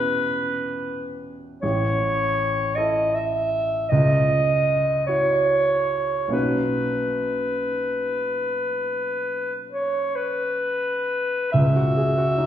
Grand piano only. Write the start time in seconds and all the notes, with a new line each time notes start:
Already playing: E2 B2 B3 C#4 E4 G4
1.63 A1
2.77 E4 A4
3.92 C#2
5.08 E4 F#4
6.28 B1 A#3 C#4 D#4 F#4
11.54 C#2
11.76 F#4
11.97 G#4
12.18 F#4
12.38 D#4